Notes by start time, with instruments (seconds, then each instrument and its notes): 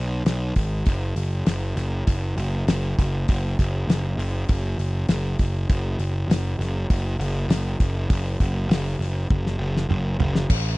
Already playing: picked electric bass B1
0.25 picked electric bass B1, snare, open hi-hat
0.56 picked electric bass G#1, kick, open hi-hat
0.86 picked electric bass F#1, kick, open hi-hat
1.16 picked electric bass F#1, open hi-hat
1.46 picked electric bass F#1, snare, open hi-hat
1.76 picked electric bass F#1, snare, open hi-hat
2.07 picked electric bass F#1, kick, open hi-hat
2.37 picked electric bass F#1, open hi-hat
2.67 picked electric bass F#1, snare, open hi-hat
2.99 picked electric bass F#1, kick, open hi-hat
3.28 picked electric bass F#1, kick, open hi-hat
3.59 picked electric bass F#1, kick, open hi-hat
3.87 picked electric bass F#1, snare, open hi-hat
4.17 picked electric bass F#1, open hi-hat
4.49 picked electric bass F#1, kick, open hi-hat
4.78 picked electric bass F#1, open hi-hat
5.09 picked electric bass F#1, snare, open hi-hat
5.39 picked electric bass F#1, kick, open hi-hat
5.69 picked electric bass F#1, kick, open hi-hat
5.99 picked electric bass F#1, open hi-hat
6.28 picked electric bass F#1, snare, open hi-hat
6.59 picked electric bass F#1, snare, open hi-hat
6.90 picked electric bass F#1, kick, open hi-hat
7.19 picked electric bass F#1, open hi-hat
7.48 picked electric bass F#1, snare, open hi-hat
7.80 picked electric bass F#1, kick, open hi-hat
8.10 picked electric bass F#1, kick, open hi-hat
8.40 picked electric bass F#1, kick, open hi-hat
8.68 picked electric bass F#1, snare, open hi-hat
8.99 picked electric bass F#1, snare, open hi-hat
9.30 picked electric bass F#1, kick, high tom
9.46 snare
9.58 picked electric bass F#1
9.77 snare
9.89 picked electric bass F#1, mid tom
10.19 picked electric bass F#1, floor tom
10.35 snare
10.50 picked electric bass A1, kick, crash